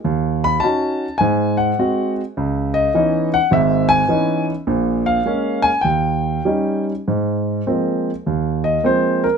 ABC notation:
X:1
M:4/4
L:1/8
Q:"Swing" 1/4=103
K:Ab
V:1 name="Grand piano"
z _c' =a2 _a _g2 z | z e2 _g _f a2 z | z f2 a g3 z | z4 z e c B |]
V:2 name="Grand piano"
E,,2 [DE_G] z A,,2 [A,CG] z | D,,2 [_F,_CDE] z [A,,,A,,]2 [F,CDE] z | [B,,,B,,]2 [A,B,D] z E,,2 [G,DE] z | A,,2 [F,A,B,C] z E,,2 [F,A,B,C] z |]